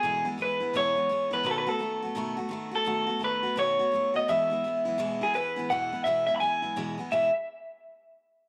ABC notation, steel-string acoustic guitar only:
X:1
M:4/4
L:1/8
Q:"Swing" 1/4=169
K:E
V:1 name="Steel-string acoustic guitar"
[E,,B,,E,G,B,E] [E,G,B,E] [E,G,B,E] [E,G,B,E] [E,,B,,E,G,B,E] [E,G,B,E] [E,G,B,E] [E,G,B,E] | [B,,D,A,B,F] [A,B,F] [D,A,B,F] [A,B,F] [B,,D,A,B,F] [A,B,F] [D,A,B,F] [A,B,F] | [B,,D,A,B,F] [A,B,F] [D,A,B,F] [A,B,F] [B,,D,A,B,F] [A,B,F] [D,A,B,F] [A,B,F] | [E,,B,,E,G,B,E] [E,G,B,E] [E,G,B,E] [E,G,B,E] [E,,B,,E,G,B,E] [E,G,B,E] [E,G,B,E] [E,G,B,E] |
[E,,B,,E,G,B,E] [E,G,B,E] [E,,B,,E,G,B,E] [E,G,B,E] [E,G,B,E] [E,G,B,E] [E,,B,,E,G,B,E] [E,G,B,E] | [E,,B,,E,G,B,E] z6 z |]